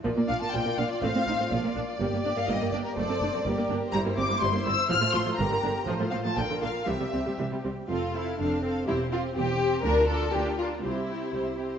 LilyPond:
<<
  \new Staff \with { instrumentName = "Violin section" } { \time 2/4 \key bes \major \tempo 4 = 123 r8 f''16 a''16 g''8 f''16 d''16 | f''4. r8 | r8 d''16 f''16 ees''8 d''16 bes'16 | d''4. r8 |
\key f \major bes''8 d'''8 c'''8 e'''8 | f'''8 c'''8 bes''4 | r8 f''16 a''16 g''8 f''8 | e''4 r4 |
f''8 f''8 f''8 f''8 | c''8 c''8 c''8 c''8 | bes'8 bes'8 bes'8 bes'8 | c''8 c''8 c''8 c''8 | }
  \new Staff \with { instrumentName = "Violin section" } { \time 2/4 \key bes \major << { d''2 | c''4 d''4~ | d''2 | c''4 bes'4 |
\key f \major c''2~ | c''4 bes'4 | c''4 bes'4 | g'4. r8 |
f'8 e'8 d'8 c'8 | e'8 f'8 g'4 | bes'8 a'8 g'8 f'8 | e'4. r8 | } \\ { f'2~ | f'2 | g'2 | a'4 g'4 |
e'2 | f'4 g'4 | f'2 | c'4. r8 |
r2 | r2 | r2 | r2 | } >> }
  \new Staff \with { instrumentName = "Viola section" } { \time 2/4 \key bes \major <f bes>16 bes16 <bes d'>16 bes16 <f bes>16 bes16 <bes d'>16 r16 | <a c'>16 c'16 <c' ees'>16 c'16 <f bes>16 bes16 <bes d'>16 r16 | <g bes>16 bes16 <bes d'>16 bes16 <g bes>16 bes16 <bes d'>16 r16 | a16 <a c'>16 <a d'>16 <a c'>16 <g bes>16 bes16 <bes d'>16 r16 |
\key f \major g16 <g bes>16 <g c'>16 <g bes>16 g16 <g bes>16 <g c'>16 r16 | f16 <f a>16 <f c'>16 <f a>16 <d g>16 <d bes>16 <d d'>16 r16 | f16 <f a>16 <f c'>16 <f a>16 <d f>16 <d bes>16 <d d'>16 r16 | <e g>16 g16 <g c'>16 g16 <e g>16 g16 <g c'>16 r16 |
<c' a'>8 <c' a'>8 <c' a'>8 <c' a'>8 | <c' g'>8 <c' g'>8 <c' g'>8 <c' g'>8 | <d' f'>8 <d' f'>8 <d' f'>8 <d' f'>8 | <c' g'>8 <c' g'>8 <c' g'>8 <c' g'>8 | }
  \new Staff \with { instrumentName = "Cello section" } { \clef bass \time 2/4 \key bes \major bes,16 bes,16 bes,16 bes,16 bes,16 bes,16 bes,16 r16 | a,16 a,16 a,16 a,16 bes,16 bes,16 bes,16 r16 | g,16 g,16 g,16 g,16 g,16 g,16 g,16 r16 | fis,16 fis,16 fis,16 fis,16 g,16 g,16 g,16 r16 |
\key f \major g,16 g,16 g,16 g,16 g,16 g,16 g,16 r16 | a,16 a,16 a,16 a,16 g,16 g,16 g,16 r16 | a,16 a,16 a,16 a,16 bes,16 bes,16 bes,16 r16 | c16 c16 c16 c16 c16 c16 c16 r16 |
f,4 f,4 | e,4 e,4 | d,4 d,4 | c,4 c,4 | }
  \new Staff \with { instrumentName = "Double bass section" } { \clef bass \time 2/4 \key bes \major bes,,16 r16 bes,,16 r16 bes,,16 r16 bes,,16 r16 | a,,16 r16 a,,16 r16 bes,,16 r16 bes,,16 r16 | g,,16 r16 g,,16 r16 g,,16 r16 g,,16 r16 | fis,,16 r16 fis,,16 r16 g,,16 r16 g,,16 r16 |
\key f \major g,,16 r16 g,,16 r16 g,,16 r16 g,,16 r16 | a,,16 r16 a,,16 r16 g,,16 r16 g,,16 r16 | a,,16 r16 a,,16 r16 bes,,16 r16 bes,,16 r16 | c,16 r16 c,16 r16 c,16 r16 c,16 r16 |
f,,4 f,,4 | e,,4 e,,4 | d,4 d,4 | c,4 c,4 | }
>>